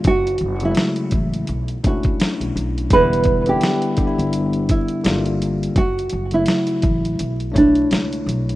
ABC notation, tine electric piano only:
X:1
M:4/4
L:1/16
Q:"Swing 16ths" 1/4=84
K:Edor
V:1 name="Tine electric piano"
z3 [C,F,^G,A,E]4- [C,F,G,A,E] z2 [A,CDE]6 | [D,G,B,E]3 [D,G,B,E]3 [D,G,B,DE]6 [D,G,_B,=F]4 | z3 [C,F,A,E]4- [C,F,A,E] z2 [A,DEc]6 |]